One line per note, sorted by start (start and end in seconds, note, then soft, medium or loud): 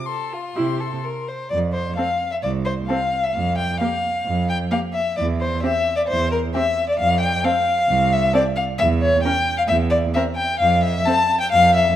0.06 0.34 A4 soft
0.06 1.27 C6 soft
0.33 0.57 F4 soft
0.55 0.95 C3 soft
0.55 0.78 E4 soft
0.55 0.82 G4 soft
0.80 1.06 A4 soft
1.04 1.29 A#4 soft
1.28 1.49 C5 soft
1.50 1.90 F2 soft
1.50 1.58 D5 medium
1.73 1.96 C5 medium
1.96 2.06 C4 soft
1.96 2.05 A4 soft
1.96 2.31 F5 medium
2.31 2.36 E5 soft
2.42 2.82 C2 soft
2.42 2.50 D5 medium
2.65 2.73 C5 medium
2.88 2.97 C4 soft
2.88 2.97 A4 soft
2.88 3.25 F5 medium
3.23 3.35 E5 medium
3.33 3.72 F2 medium
3.33 3.57 F5 medium
3.58 3.80 G5 medium
3.80 3.89 A#3 soft
3.80 3.89 G4 soft
3.80 4.47 F5 medium
4.26 4.64 F2 soft
4.49 4.57 G5 medium
4.71 4.79 A#3 soft
4.71 4.80 G4 soft
4.71 4.79 F5 medium
4.93 5.16 E5 medium
5.17 5.56 E2 medium
5.17 5.25 D5 medium
5.40 5.62 C5 medium
5.63 5.71 C4 soft
5.63 5.72 G4 soft
5.63 5.96 E5 medium
5.96 6.01 D5 medium
6.08 6.47 E2 medium
6.08 6.31 C5 medium
6.31 6.39 A#4 medium
6.54 6.63 C4 soft
6.54 6.62 G4 soft
6.54 6.87 E5 medium
6.89 6.99 D5 medium
6.99 7.36 F2 medium
6.99 7.20 F5 medium
7.20 7.46 G5 medium
7.44 7.52 C4 soft
7.44 7.52 A4 soft
7.44 8.14 F5 medium
7.89 8.26 C2 medium
8.13 8.34 E5 medium
8.33 8.42 C4 soft
8.33 8.41 A4 medium
8.33 8.43 D5 medium
8.56 8.64 F5 medium
8.78 9.17 E2 medium
8.78 8.86 E5 medium
9.01 9.23 C#5 medium
9.23 9.32 C#4 soft
9.23 9.33 A#4 soft
9.23 9.57 G5 medium
9.58 9.63 F5 medium
9.68 10.07 E2 medium
9.68 9.76 E5 medium
9.90 9.98 D5 medium
10.14 10.23 C4 soft
10.14 10.24 A#4 medium
10.14 10.22 E5 medium
10.36 10.59 G5 medium
10.60 10.99 F2 medium
10.60 10.83 F5 medium
10.83 11.07 E5 medium
11.06 11.14 C4 soft
11.06 11.16 A4 soft
11.06 11.40 A5 medium
11.40 11.51 G5 medium
11.52 11.91 F2 medium
11.52 11.74 F5 loud
11.75 11.96 E5 medium